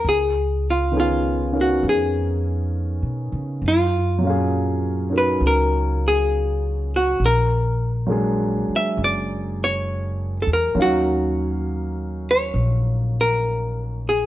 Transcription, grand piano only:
0.92 3.62 D#3 soft
0.92 3.62 B3 soft
0.92 1.51 C#4 soft
0.92 1.52 D#4 soft
0.97 3.64 G#4 soft
1.52 3.62 C#4 soft
1.52 3.62 D#4 soft
1.52 3.63 A#4 soft
1.52 3.62 F5 soft
4.18 7.19 A#2 soft
4.18 7.17 F#3 soft
4.24 5.08 C#4 soft
4.24 7.22 F5 soft
4.30 7.23 G#4 medium
5.10 7.19 C#4 soft
5.10 7.19 D#4 soft
5.10 7.20 F#4 soft
5.10 7.20 A#4 soft
8.07 10.73 F#3 soft
8.07 10.76 G#3 soft
8.07 10.74 A#3 soft
8.07 10.76 D4 soft
8.11 10.77 G#4 medium
10.75 14.26 F#3 soft
10.75 14.26 A#3 soft
10.75 14.26 C#4 soft
10.75 14.26 D#4 soft
10.80 14.26 F5 medium

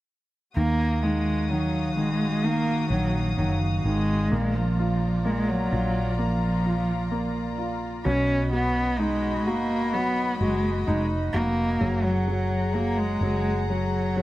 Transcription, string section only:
0.56 4.28 F#4 medium
0.56 4.28 F5 medium
0.56 4.27 D#6 medium
4.31 8.03 F4 medium
4.31 8.03 D5 medium
4.31 8.03 A#5 medium
8.05 11.77 F#4 medium
8.05 11.77 D#5 medium
8.05 11.77 B5 medium
11.80 14.22 G#4 medium
11.80 14.22 F#5 medium
11.80 14.22 A#5 medium

